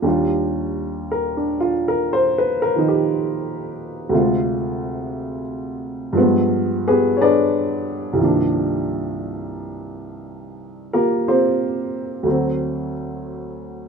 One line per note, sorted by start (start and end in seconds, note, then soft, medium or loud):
0.02 4.10 D#2 soft
0.02 4.12 G3 soft
0.02 1.36 D4 soft
0.07 1.59 F4 medium
1.11 1.42 A#4 medium
1.37 1.72 D4 soft
1.60 1.84 F4 medium
1.88 2.06 A#4 medium
2.13 2.44 C5 medium
2.38 2.74 B4 medium
2.62 2.85 A#4 medium
2.76 4.11 D#3 soft
2.76 4.12 F3 soft
2.76 4.12 D#4 soft
2.88 5.41 G4 medium
4.09 6.14 D2 medium
4.09 6.15 C3 soft
4.09 6.14 G#3 medium
4.15 6.16 F4 medium
6.13 8.14 G2 medium
6.13 8.18 F3 medium
6.13 8.19 G#3 medium
6.18 6.86 B3 medium
6.88 7.18 B3 medium
6.88 7.18 G4 medium
6.88 7.18 G#4 medium
6.88 7.18 B4 medium
7.17 7.23 C#5 medium
7.21 8.23 D4 medium
7.21 8.17 G#4 medium
7.21 8.17 B4 medium
7.21 8.85 D5 medium
8.13 12.23 C2 medium
8.13 12.24 G2 soft
8.17 12.25 D#3 soft
8.17 12.26 F3 soft
8.22 10.93 A#3 soft
8.22 12.28 D4 medium
10.93 11.25 A#3 medium
10.93 11.25 F4 medium
10.93 11.25 G4 medium
10.93 11.24 A#4 medium
11.28 12.26 C4 medium
11.28 12.24 F4 medium
11.28 12.24 G4 medium
11.28 12.92 C5 medium
12.23 13.88 D2 soft
12.23 13.88 D3 soft
12.23 13.88 F#3 soft
12.28 13.88 C4 medium